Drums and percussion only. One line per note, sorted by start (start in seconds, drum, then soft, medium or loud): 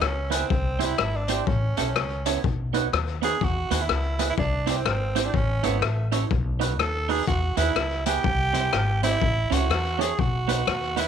0.02 cross-stick loud
0.32 closed hi-hat loud
0.50 kick loud
0.80 closed hi-hat medium
0.98 cross-stick loud
1.28 closed hi-hat medium
1.47 kick loud
1.77 closed hi-hat medium
1.96 cross-stick loud
2.26 closed hi-hat loud
2.44 kick loud
2.74 closed hi-hat medium
2.93 cross-stick loud
3.22 closed hi-hat medium
3.41 kick loud
3.71 closed hi-hat medium
3.89 cross-stick loud
4.19 closed hi-hat medium
4.38 kick loud
4.67 closed hi-hat medium
4.86 cross-stick loud
5.16 closed hi-hat medium
5.34 kick loud
5.63 closed hi-hat medium
5.82 cross-stick loud
6.12 closed hi-hat medium
6.31 kick loud
6.61 closed hi-hat medium
6.79 cross-stick loud
7.09 open hi-hat soft
7.27 kick loud
7.27 hi-hat pedal medium
7.57 closed hi-hat medium
7.76 cross-stick loud
8.06 closed hi-hat medium
8.24 kick loud
8.54 closed hi-hat medium
8.73 cross-stick loud
9.03 closed hi-hat medium
9.21 kick loud
9.52 closed hi-hat medium
9.71 cross-stick loud
10.01 closed hi-hat medium
10.19 kick loud
10.49 closed hi-hat medium
10.67 cross-stick loud
10.97 closed hi-hat medium